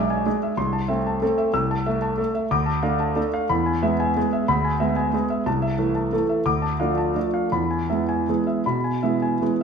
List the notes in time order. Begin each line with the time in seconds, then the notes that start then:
Already playing: B1 G#3 D4 E5 G#5 D6
0.10 G#5
0.26 G#3 D4 G#4
0.43 E5
0.57 C2 C6
0.73 A5
0.88 A3 C4 E5
1.07 A5
1.22 A3 C4 A4
1.38 E5
1.54 C2 E6
1.71 A5
1.86 A3 E5
2.02 A5
2.18 A3 A4
2.35 E5
2.51 D2 D6
2.66 A5
2.83 A3 D4 F5
3.00 A5
3.16 A3 D4 A4
3.34 F5
3.49 E2 B5
3.66 G#5
3.83 G#3 B3 E5
4.00 G#5
4.17 G#3 B3 G#4
4.33 E5
4.48 D2 B5
4.65 G#5
4.80 G#3 B3 E5
4.96 G#5
5.13 G#3 B3 G#4
5.30 E5
5.46 C2 A5
5.62 E5
5.78 E3 A3 A4
5.95 A5
6.13 E3 A3 A4
6.29 E5
6.46 D2 D6
6.62 A5
6.80 F3 A3 D4 F5
6.98 A5
7.15 F3 A3 D4 A4
7.34 F5
7.52 E2 B5
7.71 G#5
7.90 E3 G#3 B3 E5
8.09 G#5
8.29 E3 G#3 B3 G#4
8.47 E5
8.66 B2 B5
8.84 G#5
9.03 E3 G#3 B3 E5
9.22 G#5
9.41 E3 G#3 B3 G#4